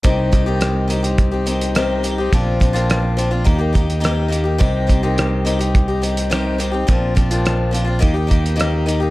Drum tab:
HH |x-x-x-xxx-xxx-x-|x-xxx-x-x-xxx-x-|x-x-x-xxx-xxx-x-|x-xxx-x-x-xxx-x-|
SD |----r-------r---|----r-------r---|----r-------r---|----r-------r---|
BD |o-o-----o-------|o-o-----o-o-----|o-o-----o-------|o-o-----o-o-----|